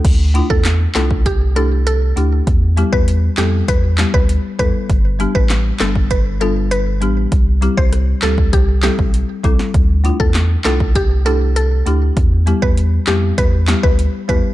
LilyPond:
<<
  \new Staff \with { instrumentName = "Synth pluck" } { \time 4/4 \key d \dorian \tempo 4 = 99 r8. a'8 r16 a'8 g'16 r16 a'16 r16 a'8. r16 | r8. b'8 r16 g'8 b'16 r8 b'16 r8 b'16 r16 | r8. b'8 r16 a'8 b'16 r16 a'16 r16 b'8. r16 | r8. c''8 r16 a'8 g'16 r16 g'16 r4 r16 |
r8. a'8 r16 a'8 g'16 r16 a'16 r16 a'8. r16 | r8. b'8 r16 g'8 b'16 r8 b'16 r8 b'16 r16 | }
  \new Staff \with { instrumentName = "Marimba" } { \time 4/4 \key d \dorian r8 <a d' e' f'>8 r8 <a d' e' f'>8 r8 <a d' e' g'>8 r8 <a d' e' g'>8 | r8 <g b e' g'>8 r8 <g b e' a'>8 r8 <g b e' g'>8 r8 <g b e' a'>8 | r8 <g b d' g'>8 r8 <g b d' a'>8 r8 <g b d' f'>8 r8 <g b d' g'>8 | r8 <g c' e' g'>8 r8 <g c' e' g'>8 r8 <g c' e' a'>8 r8 <g c' e' a'>8 |
r8 <a d' e' f'>8 r8 <a d' e' f'>8 r8 <a d' e' g'>8 r8 <a d' e' g'>8 | r8 <g b e' g'>8 r8 <g b e' g'>8 r8 <g b e' g'>8 r8 <g b e' g'>8 | }
  \new Staff \with { instrumentName = "Sub bass" } { \clef bass \time 4/4 \key d \dorian d,8. e,8. c,2 d,8 | e,8. e,8. f,8 e,8. d,8 r16 e,16 r16 | g,,8. a,,8. g,,2 a,,8 | c,8. c,8. d,8 c,8. b,,8 r16 c,16 r16 |
d,8. e,8. c,2 d,8 | e,8. e,8. f,8 e,8. d,8 r16 e,16 r16 | }
  \new DrumStaff \with { instrumentName = "Drums" } \drummode { \time 4/4 <cymc hh bd>8 hh16 bd16 <hc hh sn>8 <hc hh sn>16 bd16 <hh bd>8 hh8 hh8 hh8 | <hh bd>8 hh16 bd16 hh8 <hc hh sn>8 <hh bd>8 <hc hh sn>16 bd16 hh8 <hh bd>8 | <hh bd>8 hh16 bd16 <hc hh sn>8 <hc hh sn>16 bd16 <hh bd>8 hh8 hh8 hh8 | <hh bd>8 hh16 bd16 <hh ss>8 <hc hh sn>16 bd16 <hh bd>8 <hc hh sn>16 bd16 hh8 <hh bd>16 sn16 |
<hh bd>8 hh16 bd16 <hc hh sn>8 <hc hh sn>16 bd16 <hh bd>8 hh8 hh8 hh8 | <hh bd>8 hh16 bd16 hh8 <hc hh sn>8 <hh bd>8 <hc hh sn>16 bd16 hh8 <hh bd>8 | }
>>